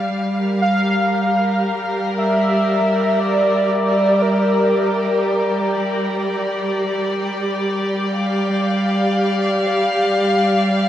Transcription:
0.00 10.89 G3 medium
0.00 0.13 G4 medium
0.00 0.12 D5 medium
0.00 1.68 F5 medium
0.41 6.33 A#4 medium
0.49 10.89 G4 medium
0.62 1.62 F5 loud
2.08 10.89 D5 medium
2.18 3.21 E5 loud
3.20 4.23 D5 loud
4.22 5.79 A#4 medium
8.17 10.89 F5 medium

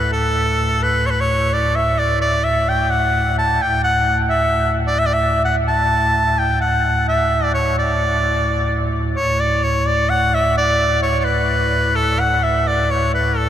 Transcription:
0.00 3.59 D2 medium
0.00 3.59 A2 medium
0.00 0.12 B4 medium
0.13 0.84 A4 medium
0.82 1.08 B4 medium
1.06 1.12 C#5 medium
1.11 1.22 B4 medium
1.21 1.55 C#5 loud
1.53 1.77 D5 medium
1.76 2.00 E5 medium
1.99 2.21 D5 medium
2.21 2.46 D5 loud
2.44 2.70 E5 loud
2.69 2.92 G5 medium
2.90 3.37 F#5 medium
3.38 3.63 A5 medium
3.61 9.16 D2 medium
3.61 9.15 A2 medium
3.61 3.83 G5 loud
3.84 4.17 F#5 loud
4.30 4.73 E5 loud
4.87 5.00 D5 medium
4.99 5.08 E5 loud
5.06 5.15 D5 medium
5.13 5.44 E5 medium
5.45 5.56 F#5 medium
5.68 6.40 A5 medium
6.38 6.60 G5 medium
6.61 7.05 F#5 medium
7.09 7.45 E5 medium
7.43 7.54 D5 medium
7.54 7.76 C#5 medium
7.78 8.90 D5 medium
9.16 13.49 D2 medium
9.16 13.49 A2 medium
9.16 9.41 C#5 loud
9.40 9.65 D5 medium
9.63 9.88 C#5 medium
9.87 10.11 D5 loud
10.10 10.36 F#5 loud
10.34 10.57 E5 loud
10.57 11.00 D5 loud
11.02 11.19 C#5 medium
11.19 11.26 C#5 medium
11.25 11.97 B4 loud
11.95 12.21 A4 loud
12.20 12.45 F#5 loud
12.43 12.69 E5 medium
12.67 12.92 D5 loud
12.90 13.12 C#5 medium
13.14 13.38 B4 medium
13.37 13.49 A4 medium

